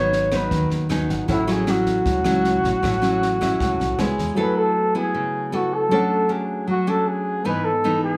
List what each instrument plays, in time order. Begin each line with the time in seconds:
Already playing: upright bass G#1, nylon-string guitar G#2 F#3 B3 D#4, grand piano D#4 G#4 B4 F#5, flugelhorn C#5
0.13 snare
0.31 nylon-string guitar F#3 B3 D#4, kick, cross-stick, snare
0.36 flugelhorn B4
0.51 upright bass D#2, nylon-string guitar D#3, kick, snare
0.70 upright bass D#2, snare
0.89 nylon-string guitar F#3 B3 D#4, grand piano G#5, cross-stick, snare
1.09 upright bass G#1, grand piano F#5, kick, snare
1.25 upright bass A1, nylon-string guitar A2 F#3 C#4 E4, grand piano E4 A4 C#5, kick, snare
1.32 flugelhorn E4, grand piano F#5
1.47 nylon-string guitar F#3 C#4 E4, snare
1.52 flugelhorn G#4
1.67 nylon-string guitar F#3 C#4 E4, flugelhorn F#4, cross-stick, snare
1.86 kick, snare
2.06 upright bass C#2, nylon-string guitar A2, kick, snare
2.24 upright bass C#2, nylon-string guitar F#3 C#4 E4, cross-stick, snare
2.44 snare
2.64 upright bass A1, kick, snare
2.83 upright bass A1, nylon-string guitar A2 F#3 C#4 E4, kick, cross-stick, snare
3.02 nylon-string guitar F#3 C#4 E4, snare
3.22 snare
3.41 nylon-string guitar F#3 C#4 E4, grand piano E5, kick, cross-stick, snare
3.60 upright bass C#2, nylon-string guitar A2, grand piano F#5, kick, snare
3.80 upright bass B1, snare
3.97 upright bass C#2, nylon-string guitar G#3 B3 E4, grand piano E4 B4 C#5 G#5, cross-stick, snare
4.01 flugelhorn G#4
4.18 upright bass E2, kick, snare
4.34 grand piano F#3 A3 E4, nylon-string guitar F#3 B3 E4 A4
4.39 grand piano B4 G#5, flugelhorn B4
4.58 flugelhorn A4
4.95 nylon-string guitar B3 E4, flugelhorn G#4
5.14 nylon-string guitar C#3
5.52 nylon-string guitar B3 E4 A4, flugelhorn F#4
5.74 flugelhorn A4
5.89 grand piano F#3 A3, nylon-string guitar F#3 C#4 D4 A4
5.93 grand piano C#5 F#5
6.29 nylon-string guitar C#4 D4, flugelhorn G#4
6.67 nylon-string guitar F#3, flugelhorn F#4
6.87 nylon-string guitar C#4 D4, flugelhorn A4
7.07 flugelhorn G#4
7.43 nylon-string guitar G#2 E3 B3 D#4, grand piano B3 B4, flugelhorn B4
7.47 grand piano D#5 G#5
7.65 flugelhorn A4
7.84 nylon-string guitar E3 B3 D#4
8.04 flugelhorn G#4